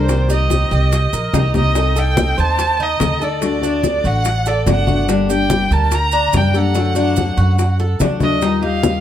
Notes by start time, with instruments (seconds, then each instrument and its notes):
Already playing: upright bass C2, cuban tres A#4, violin C5
0.07 nylon-string guitar C3 D#3 A#3 C4 G4, high bongo, high conga, maracas
0.28 nylon-string guitar D#3 A#3 C4 G4, cuban tres D#4, violin D#5, high bongo, high conga, maracas
0.49 nylon-string guitar D#3 A#3 C4 G4, high bongo, high conga, maracas
0.71 upright bass C2, cuban tres G4, high conga, maracas
0.92 muted nylon-string guitar stroke, high bongo, high conga, maracas
1.13 upright bass A#1, cuban tres A#4, high bongo, high conga, maracas
1.33 upright bass C2, nylon-string guitar D#3 A#3 C4 G4, cuban tres D#4, high bongo, low bongo, high conga, maracas
1.54 nylon-string guitar D#3 A#3 C4 G4, violin D#5, high bongo, high conga, maracas
1.75 nylon-string guitar C4 D#4 A4, cuban tres D#4, high bongo, high conga, maracas
1.96 nylon-string guitar D#4 A4, cuban tres A4, violin G5, high conga, maracas
2.17 nylon-string guitar C4 D#4 A4, high bongo, high conga, maracas
2.38 upright bass D#2, cuban tres C5, violin A5, maracas
2.59 muted nylon-string guitar stroke, high bongo, high conga, maracas
2.80 cuban tres D#4, violin D#5, high conga
2.99 upright bass D2, nylon-string guitar C4 D#4 A4, high bongo, low bongo, high conga, maracas
3.20 nylon-string guitar D#4 A4, cuban tres A4, violin D5, high conga, maracas
3.41 nylon-string guitar D3 A3 D4 F#4, high bongo, high conga, maracas
3.61 nylon-string guitar A3 D4 F#4, cuban tres D4, high bongo, high conga, maracas
3.83 nylon-string guitar A3 D4 F#4, high bongo, high conga, maracas
4.04 upright bass A1, cuban tres F#4, violin F#5, high conga, maracas
4.24 muted nylon-string guitar stroke, high bongo, high conga, maracas
4.46 cuban tres A4, violin D5, high bongo, high conga, maracas
4.66 upright bass G1, nylon-string guitar D3 A3 D4 F#4, cuban tres D4, violin F#5, high bongo, low bongo, high conga, maracas
4.87 nylon-string guitar A3 D4 F#4, high bongo, high conga, maracas
5.07 nylon-string guitar D3 G3 A#3 D4 G4, cuban tres D4, high bongo, high conga, maracas
5.29 nylon-string guitar G3 A#3 D4 G4, cuban tres G4, high conga, maracas
5.33 violin G5
5.50 nylon-string guitar G3 A#3 D4 G4, high bongo, high conga, maracas
5.71 upright bass D2, cuban tres A#4, violin A5, maracas
5.91 violin A#5, muted nylon-string guitar stroke, high bongo, high conga, maracas
6.12 cuban tres D4, high conga, maracas
6.33 upright bass F#2, nylon-string guitar G3 A#3 D4 G4, violin G5, high bongo, low bongo, high conga, maracas
6.54 nylon-string guitar G3 A#3 D4 G4, cuban tres A4, violin F#5, high conga, maracas
6.74 nylon-string guitar D3 F#3 A3 D4 F#4, high bongo, high conga, maracas
6.95 nylon-string guitar F#3 A3 D4 F#4, cuban tres D4, high bongo, high conga, maracas
7.16 nylon-string guitar F#3 A3 D4 F#4, high bongo, high conga, maracas
7.37 upright bass F#2, cuban tres F#4, high conga, maracas
7.57 muted nylon-string guitar stroke, high bongo, high conga, maracas
7.80 cuban tres A4, high bongo, high conga
7.99 upright bass D#2, nylon-string guitar F#3 A3 D4 F#4, cuban tres D4, high bongo, low bongo, high conga, maracas
8.20 nylon-string guitar F#3 A3 D4 F#4, violin D#5, high bongo, high conga, maracas
8.40 nylon-string guitar D#3 G3 D#4 F4, cuban tres D#4, high bongo, high conga, maracas
8.61 nylon-string guitar G3 D#4 F4, cuban tres G4, violin F5, high conga
8.82 nylon-string guitar D#3 G3 D#4 F4, high bongo, high conga, maracas